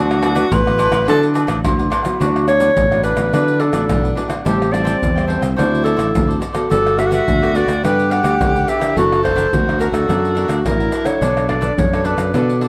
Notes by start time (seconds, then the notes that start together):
Already playing: D2 D3 F#3 B3 D4 E4 F#4 B4 D5 F#5
0.11 pandeiro, tamborim, shaker
0.21 F#3 B3 D4 E4 B4 D5 F#5, pandeiro, tamborim, low agogo, shaker
0.35 D4 B4 D5 F#5, pandeiro, shaker
0.52 A1 A2 B4, pandeiro, high agogo, shaker, surdo
0.66 F#3 B3 E4 B4 D5 F#5, pandeiro, tamborim, shaker, surdo
0.78 D4 B4 D5 F#5, pandeiro, high agogo, shaker
0.91 A1 B4 D5 F#5, pandeiro, tamborim, high agogo, shaker, surdo
1.07 D3 F#3 B3 D4 E4 A4 B4 D5 F#5, pandeiro, tamborim, low agogo, shaker, surdo
1.23 pandeiro, shaker
1.34 D4 B4 D5 F#5, pandeiro, low agogo, shaker
1.47 A1 D4 B4 D5 F#5, pandeiro, tamborim, shaker, surdo
1.64 D2 A2 F#3 B3 E4, pandeiro, tamborim, high agogo, shaker, surdo
1.78 B4 D5 F#5, pandeiro, shaker
1.90 D4 B4 D5 F#5, pandeiro, tamborim, high agogo, shaker, surdo
2.02 F#3 B3 E4 B4 D5 F#5, pandeiro, tamborim, shaker, surdo
2.20 D2 D3 D4 F#4 B4 D5 F#5, pandeiro, shaker, surdo
2.36 pandeiro, tamborim, shaker
2.47 D4 B4 C#5 D5 F#5, pandeiro, tamborim, shaker
2.60 F#3 B3 D4 E4 B4 D5 F#5, pandeiro, shaker
2.77 A1 A2, pandeiro, shaker, surdo
2.91 F#3 B3 E4 B4 D5 F#5, pandeiro, tamborim, shaker
3.03 D4 B4 D5 F#5, pandeiro, shaker
3.16 A1 F#3 B3 E4 B4 D5 F#5, pandeiro, tamborim, shaker
3.33 D3 F#3 B3 D4 E4 B4 D5 F#5, pandeiro, tamborim, shaker, surdo
3.48 pandeiro, shaker
3.59 D4 A4 B4 D5 F#5, pandeiro
3.73 A1 F#3 B3 D4 E4 B4 D5 F#5, pandeiro, tamborim, shaker
3.89 B1 A2 D4, pandeiro, tamborim, shaker, surdo
4.03 B4 D5 F#5, pandeiro, shaker
4.15 F#3 B3 D4 E4 B4 D5 F#5, pandeiro
4.28 B4 D5 F#5, pandeiro, tamborim, shaker
4.39 D4
4.45 A1 A2 G3 C4 E4 G4 A4 C5 E5 G5, pandeiro, shaker, surdo
4.62 pandeiro, tamborim, shaker
4.71 G3 C4 E4 A4 C5 D5 E5 G5, pandeiro, tamborim, shaker
4.84 A4 C5 E5 G5, pandeiro, shaker
5.02 E2 E3, pandeiro, shaker, surdo
5.15 G3 C4 E4 C5 E5 G5, pandeiro, tamborim, shaker
5.27 A4 C5 E5 G5, pandeiro
5.41 C2 C5 E5 G5, pandeiro, tamborim, shaker
5.56 D2 D3 F#3 C4 E4 F#4 A4 C5 D5, pandeiro, tamborim, shaker, surdo
5.75 pandeiro, shaker
5.83 F#4 A4 C5 D5, pandeiro
5.96 A1 F#4 A4 C5 D5, pandeiro, tamborim, shaker
6.14 D2 A2 F#3 C4 E4, pandeiro, tamborim, shaker, surdo
6.27 A4 C5 D5, pandeiro, shaker
6.40 F#4 A4 C5 D5, pandeiro, shaker
6.53 B3 F#4 A4 C5 D5, pandeiro, tamborim, shaker
6.70 G1 G3 F#4 G4 A4 B4 D5, pandeiro, shaker, surdo
6.87 pandeiro, tamborim, shaker
6.97 B3 F#4 G4 A4 B4 D5 E5, pandeiro, tamborim, shaker
7.07 F#5
7.11 F#4 G4 B4 D5 E5, pandeiro, shaker
7.27 D2 D3, pandeiro, shaker, surdo
7.41 B3 F#4 G4 A4 B4 D5, pandeiro, tamborim, shaker
7.54 B3 F#4 G4 A4 B4 D5, pandeiro, shaker
7.66 D2 G4 B4 D5, pandeiro, tamborim, shaker
7.83 G2 G3 B3 F#4 G4 A4 B4 D5, pandeiro, tamborim, shaker, surdo
7.99 pandeiro, shaker
8.10 F#4 G4 B4 D5 F#5, pandeiro
8.23 D2 F#4 G4 B4 D5, pandeiro, tamborim, shaker
8.40 C#2 D3 B3 A4, pandeiro, tamborim, shaker, surdo
8.54 G4 B4 D5, pandeiro, shaker
8.67 F#4 G4 B4 D5 E5, pandeiro, shaker
8.79 D4 E4 G4 A#4 B4 D5, pandeiro, tamborim, shaker
8.96 F#1 F#3 D4 F#4 A4 A#4 E5 F#5, pandeiro, shaker, surdo
9.12 pandeiro, tamborim, shaker
9.22 D4 E4 A#4 C5 E5 F#5, pandeiro, tamborim, surdo
9.35 D4 A#4 E5 F#5, pandeiro, shaker
9.52 D2 F#3 D4 E4 F#4 A#4, pandeiro, shaker, surdo
9.67 A#4 E5 F#5, pandeiro, tamborim, shaker
9.79 D4 A#4 E5 F#5, pandeiro, shaker
9.92 D2 D4 E4 A4 A#4 E5 F#5, pandeiro, tamborim, shaker
10.08 F#2 F#3 D4 A#4 E5 F#5, pandeiro, tamborim, shaker, surdo
10.25 pandeiro, shaker
10.35 D4 E4 A#4 E5 F#5, pandeiro
10.48 D2 D4 A#4 E5 F#5, pandeiro, tamborim, shaker
10.64 A1 F#3 D4 E4 A#4, pandeiro, tamborim, shaker, surdo
10.79 A#4 E5 F#5, pandeiro, shaker
10.92 D4 A#4 E5 F#5, pandeiro, shaker
11.04 D4 A4 A#4 C#5 E5 F#5, pandeiro, tamborim, shaker
11.21 B1 B3 D4 A4 B4 D5, pandeiro, shaker, surdo
11.37 pandeiro, tamborim, shaker
11.48 D4 A4 B4 C#5 D5, pandeiro, tamborim, surdo
11.61 D4 A4 B4 D5, pandeiro, shaker
11.77 F#2 F#3 C#5, pandeiro, shaker, surdo
11.92 D4 A4 B4 C#5 D5, pandeiro, tamborim, shaker
12.04 D4 A4 B4 C#5 D5, pandeiro
12.17 F#2 A4 B4 D5, pandeiro, tamborim, shaker
12.33 B2 B3 D4 A4 B4 C#5 D5, pandeiro, tamborim, shaker, surdo
12.50 pandeiro, shaker
12.61 D4 A4 B4 D5, pandeiro